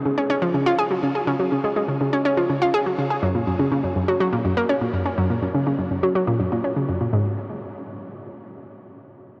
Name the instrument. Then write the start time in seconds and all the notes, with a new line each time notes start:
synth arpeggio sound
0.06 C#3
0.18 C#4
0.30 C#4
0.42 F3
0.54 C#3
0.66 F4
0.79 G#4
0.91 F#3
1.03 C#3
1.15 G#4
1.27 C#3
1.40 F#3
1.52 C#3
1.64 G#3
1.76 G#3
1.88 C#3
2.01 C#3
2.13 C#4
2.25 C#4
2.37 F3
2.50 C#3
2.62 F4
2.74 G#4
2.86 F#3
2.98 C#3
3.10 G#4
3.23 F#2
3.35 A#2
3.47 F#2
3.59 C#3
3.72 C#3
3.84 F#2
3.96 F#2
4.08 F#3
4.20 F#3
4.32 A#2
4.45 F#2
4.57 A#3
4.69 C#4
4.81 A#2
4.93 F#2
5.05 C#4
5.18 F#2
5.30 A#2
5.42 F#2
5.54 C#3
5.66 C#3
5.79 F#2
5.91 F#2
6.03 F#3
6.15 F#3
6.27 A#2
6.40 F#2
6.52 A#2
6.64 C#4
6.76 C#3
6.89 F#2
7.01 A#2
7.13 G#2